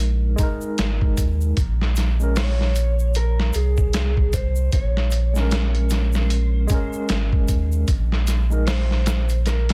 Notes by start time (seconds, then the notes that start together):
Already playing: A#1 G#3 D#4 A#4
0.36 G#3 D#4, kick, closed hi-hat, shaker
0.43 A#4
0.61 shaker
0.78 G#1, snare, closed hi-hat, shaker
1.01 kick
1.17 D#2, kick, closed hi-hat, shaker
1.41 shaker
1.57 A#1, kick, closed hi-hat, shaker
1.81 snare
1.96 snare, closed hi-hat, shaker
2.20 G#3 C#4 A#4, shaker
2.36 C#5, snare, open hi-hat, shaker
2.61 snare
2.75 closed hi-hat, shaker
2.99 shaker
3.14 A#4, closed hi-hat, shaker
3.40 snare
3.53 C2 G#4, closed hi-hat, shaker
3.77 kick, shaker
3.93 snare, closed hi-hat, shaker
4.17 kick
4.33 C5, kick, closed hi-hat, shaker
4.56 shaker
4.72 A#1 C#5, kick, closed hi-hat, shaker
4.97 snare
5.11 closed hi-hat, shaker
5.33 G#3 C#4, snare, shaker
5.41 A#4
5.51 snare, closed hi-hat, shaker
5.75 closed hi-hat
5.90 snare, closed hi-hat, shaker
6.13 snare, shaker
6.20 C5
6.30 closed hi-hat, shaker
6.67 G#3 C#4, kick, closed hi-hat, shaker
6.74 A#4
6.93 shaker
7.08 G#1, snare, closed hi-hat, shaker
7.33 kick
7.48 D#2, kick, closed hi-hat, shaker
7.72 shaker
7.87 A#1, kick, closed hi-hat, shaker
8.12 snare
8.27 snare, closed hi-hat, shaker
8.50 G#3 D#4 A#4, shaker
8.67 C5, snare, open hi-hat, shaker
8.91 snare
9.06 snare, closed hi-hat, shaker
9.29 closed hi-hat, shaker
9.46 A#4, snare, closed hi-hat, shaker
9.69 closed hi-hat